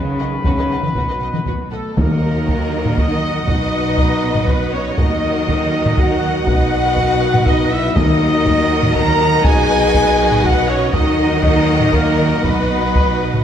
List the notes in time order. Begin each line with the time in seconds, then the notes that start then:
Already playing: C#3 D#3 F#3 C#4 B4
0.19 B1 B4 D#5 F#5
0.44 B1 C#3 C#4 F#4 B4, taiko
0.57 B1 B4 D#5
0.70 B1 B4 D#5 F#5
0.82 B1 B4 D#5, taiko mid
0.95 B1 B2 B3 F#4 B4, taiko
1.08 B1 B4 D#5
1.20 B1 B4 D#5 F#5
1.33 B1 B4 D#5, taiko mid
1.46 B1 F#4 B4, taiko
1.70 B1 A3 A4 B4 D#5 F#5
1.94 D#2 D#3 F#3 A#3 D#4 F#4 A#4 D#5, taiko
1.98 D#5 F#5
2.48 taiko
2.85 taiko low-mid
2.95 D#4 D#5, taiko
3.45 B1 B2 D#4 B4 D#5, taiko
3.97 taiko
4.35 taiko low-mid
4.45 B3 B4, taiko
4.72 C#4 C#5
4.97 D#2 D#3 F#3 D#4 A#4 D#5 F#5, taiko
5.48 taiko
5.86 taiko low-mid
5.96 F#4 F#5, taiko
6.45 B1 B2 F#4 B4 F#5, taiko
6.97 taiko
7.34 taiko low-mid
7.44 D#4 D#5, taiko
7.70 E4 E5
7.94 D#2 D#3 F#3 D#4 F#4 A#4 D#5 F#5, taiko
8.46 taiko
8.83 taiko low-mid
8.94 A#4 A#5, taiko
9.43 B1 B2 G#4 B4 G#5, taiko
9.94 taiko
10.31 taiko low-mid
10.43 F#4 F#5, taiko
10.68 C#4 C#5
10.92 D#2 D#3 F#3 D#4 A#4 D#5 F#5, taiko
11.42 D#4 D#5, taiko
11.80 taiko low-mid
11.93 A#3 A#4, taiko
12.44 B1 B2 B3 B4, taiko
12.95 taiko
13.34 taiko low-mid